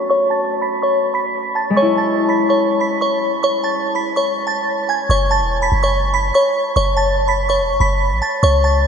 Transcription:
Already playing: A3 C#4 F#4
0.10 C#5 C#6
0.30 A5 A6
0.62 B5 B6
0.82 C#5 C#6
1.14 B5 B6
1.55 A5 A6
1.70 G#3
1.76 C#4 C#5 C#6
1.82 E4
1.97 A5 A6
2.29 B5 B6
2.49 C#5 C#6
2.80 B5 B6
3.01 C#5 C#6
3.43 C#5 C#6
3.64 A5 A6
3.95 B5 B6
4.16 C#5 C#6
4.47 A5 A6
4.89 G#5 G#6
5.10 F#1 C#5 C#6
5.31 A5 A6
5.41 E1
5.62 B5 B6
5.72 F#1
5.83 C#5 C#6
6.14 B5 B6
6.34 C#5 C#6
6.76 F#1 C#5 C#6
6.97 A5 A6
7.28 B5 B6
7.49 C#5 C#6
7.59 E1
7.70 F#1
7.80 F#1 B5 B6
8.12 A1
8.22 A5 A6
8.43 C#2 C#5 C#6
8.64 A5 A6

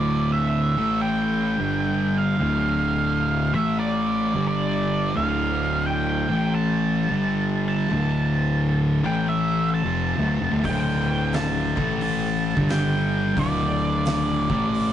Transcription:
Already playing: D1 D2 A2 D3 D5
0.32 E5
0.78 A1 A2 E3 A3
1.01 G5
1.59 G1 G2 D3 G3
2.18 F5
2.40 D1 D2 A2 D3
3.54 A1 A2 E3 A3 E5
3.79 D5
4.34 G1 G2 D3 G3
4.48 D5
5.15 D1 D2 A2 D3 F5
5.86 G5
6.29 A1 A2 E3 A3
6.55 A5
7.09 G1 G2 D3 G3
7.68 A5
7.90 D1 D2 A2 D3
9.03 A1 A2 E3 A3 G5
9.28 E5
9.74 A5
9.83 F1 F2 C3 F3
10.17 D1 D2 A2
10.40 F1 F2 C3
10.52 D1 D2 A2
10.63 D1 D2 A2 D3 G5, kick, open hi-hat
10.88 snare
11.33 A5, snare, open hi-hat
11.76 A1 A2 E3 A3, kick
12.01 A5, open hi-hat
12.56 G1 G2 D3 G3, kick
12.69 G5, snare, open hi-hat
13.36 D1 D2 A2 D3 D5, kick, open hi-hat
14.05 snare, open hi-hat
14.50 A1 A2 E3 A3, kick
14.74 open hi-hat

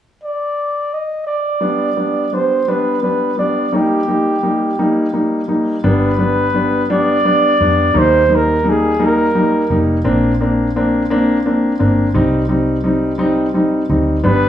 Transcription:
0.24 D5
0.93 D#5
1.27 D5
1.61 G3 B3 D4
1.97 G3 B3 D4
2.32 G3 B3 D4 C5
2.68 G3 B3 D4 B4
3.03 G3 B3 D4 B4
3.38 G3 B3 D4 D5
3.72 G3 A#3 D#4 G4
4.08 G3 A#3 D#4
4.43 G3 A#3 D#4
4.79 G3 A#3 D#4
5.13 G3 A#3 D#4
5.48 G3 A#3 D#4
5.84 G1 G3 B3 D4 B4
6.18 G3 B3 D4
6.54 G3 B3 D4
6.90 G3 B3 D4 D5
7.25 G3 B3 D4
7.60 F2 G3 B3 D4
7.94 D#2 G3 A#3 D#4
7.99 C5
8.28 G3 A#3 D#4
8.35 A#4
8.64 G3 A#3 D#4
8.70 G#4
8.99 G3 A#3 D#4
9.06 A#4
9.35 G3 A#3 D#4
9.70 F1 G3 A#3 D#4
10.04 A#1 A#3 C4 D4
10.41 A#3 C4 D4
10.76 A#3 C4 D4
11.10 A#3 C4 D4
11.46 A#3 C4 D4
11.79 G1 A#3 C4 D4
12.14 C2 G3 C4 D#4
12.49 G3 C4 D#4
12.84 G3 C4 D#4
13.18 G3 C4 D#4
13.54 G3 C4 D#4
13.89 D2 G3 C4 D#4
14.24 G1 G3 B3 D4 B4

